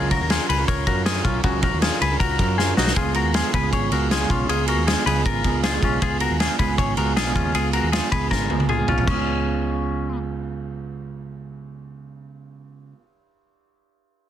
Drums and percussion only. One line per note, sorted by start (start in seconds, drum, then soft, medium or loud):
0.11 kick loud
0.11 ride medium
0.30 snare loud
0.30 ride medium
0.50 ride medium
0.68 kick loud
0.68 ride medium
0.87 kick medium
0.87 ride medium
1.06 snare loud
1.06 ride medium
1.25 kick medium
1.25 ride medium
1.43 kick loud
1.43 ride medium
1.62 kick loud
1.62 ride medium
1.82 snare loud
1.82 ride medium
2.01 ride medium
2.20 kick loud
2.20 ride medium
2.39 kick medium
2.39 ride medium
2.59 snare medium
2.77 snare loud
2.87 snare loud
2.96 kick loud
2.96 ride medium
3.14 ride medium
3.34 snare loud
3.34 ride medium
3.54 kick loud
3.54 ride medium
3.73 kick medium
3.73 ride medium
3.91 ride medium
4.11 snare loud
4.11 ride medium
4.30 kick medium
4.30 ride soft
4.49 ride medium
4.67 ride medium
4.88 snare loud
4.88 ride medium
5.07 ride medium
5.26 kick medium
5.26 ride medium
5.44 kick medium
5.44 ride medium
5.63 snare loud
5.63 ride medium
5.83 kick medium
5.83 ride medium
6.02 kick loud
6.02 ride medium
6.20 ride medium
6.40 snare loud
6.40 ride medium
6.59 kick medium
6.59 ride medium
6.78 kick loud
6.78 ride medium
6.97 ride medium
7.17 snare loud
7.17 ride medium
7.36 kick medium
7.36 ride soft
7.55 ride medium
7.73 ride medium
7.93 snare loud
7.93 ride medium
8.12 kick medium
8.12 ride medium
8.31 kick medium
8.31 snare medium
8.50 high tom medium
8.60 high tom medium
8.69 mid tom medium
8.88 floor tom loud
8.98 floor tom loud
9.08 kick loud
9.08 crash medium